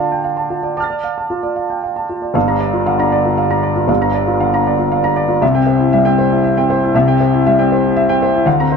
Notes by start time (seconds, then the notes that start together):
Already playing: D3 D4 F4 D5 F5 A5
0.12 G5
0.24 F5
0.37 A5
0.50 F4
0.63 D5
0.77 A5 D6 F6
0.83 A6
0.90 D5
1.04 F5
1.18 A5
1.30 F4
1.43 D5
1.56 F5
1.70 G5
1.83 F5
1.96 A5
2.09 F4
2.22 D5
2.34 G1 G2 F5
2.48 D4 A#5
2.60 D5
2.73 F4
2.86 D3 F5
2.99 D4 A#5
3.12 D5
3.25 F4
3.38 F5
3.51 D4 A#5
3.63 D5
3.76 F4
3.88 G1 G2 F5
4.01 D4 A#5
4.14 D5
4.27 F4
4.40 D3 F5
4.53 D4 A#5
4.67 D5
4.79 F4
4.92 F5
5.04 D4 A#5
5.16 D5
5.29 F4
5.41 C2 C3 E5
5.55 C4 G5
5.67 C5
5.79 E4
5.92 G3 E5
6.05 C4 G5
6.18 C5
6.31 E4
6.44 E5
6.57 C4 G5
6.70 C5
6.83 E4
6.94 C2 C3 E5
7.08 C4 G5
7.20 C5
7.33 E4
7.46 G3 E5
7.59 C4 G5
7.72 C5
7.86 E4
7.97 E5
8.09 C4 G5
8.22 C5
8.35 E4
8.46 D2 D3 F5
8.60 C4 A#5
8.72 C5